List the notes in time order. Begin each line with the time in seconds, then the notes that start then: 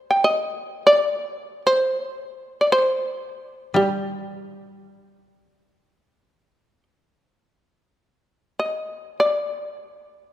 0.11 G5
0.24 D#5
0.87 D5
1.35 C5
1.67 C5
2.61 D5
2.72 C5
3.74 G3 G4
8.59 D#5
9.20 D5